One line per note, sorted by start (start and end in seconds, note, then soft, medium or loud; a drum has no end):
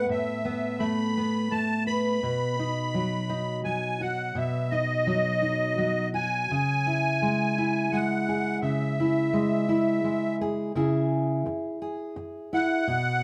0.00 0.45 B3 soft
0.00 0.12 B4 medium
0.09 2.18 A2 medium
0.09 0.83 E5 medium
0.45 1.17 B3 medium
0.79 1.50 A3 medium
0.79 1.53 B5 medium
1.17 2.59 B3 soft
1.51 2.18 A3 soft
1.51 1.84 A5 medium
1.87 5.37 B4 medium
1.87 3.60 B5 medium
2.23 4.34 B2 medium
2.59 3.29 D#4 soft
2.94 3.64 F#3 medium
3.29 4.32 D#4 soft
3.64 5.06 F#3 medium
3.64 4.01 G#5 medium
4.01 4.32 F#4 medium
4.01 4.37 F#5 medium
4.35 6.49 B2 medium
4.35 4.73 E5 medium
4.70 5.41 D#4 soft
4.70 6.09 D#5 medium
5.07 5.77 F#3 medium
5.42 6.45 D#4 soft
5.78 6.49 F#3 medium
6.14 6.45 F#4 medium
6.14 7.97 G#5 medium
6.51 8.62 C#3 medium
6.86 7.58 E4 soft
7.22 7.92 G#3 medium
7.58 8.99 E4 medium
7.92 9.33 G#3 medium
7.92 8.59 F#5 medium
8.29 10.41 G#4 medium
8.62 10.71 C#3 medium
8.62 10.36 E5 medium
9.00 9.68 E4 medium
9.33 10.03 G#3 medium
9.69 10.71 E4 medium
10.04 10.71 G#3 medium
10.41 10.72 G#4 medium
10.75 11.45 C#3 medium
10.75 12.52 E4 medium
10.75 11.81 G#4 medium
11.46 muted steel-string acoustic guitar stroke medium
11.82 12.84 G#4 medium
12.16 muted steel-string acoustic guitar stroke medium
12.53 12.84 E4 medium
12.53 13.23 F#5 medium
12.87 13.23 B2 medium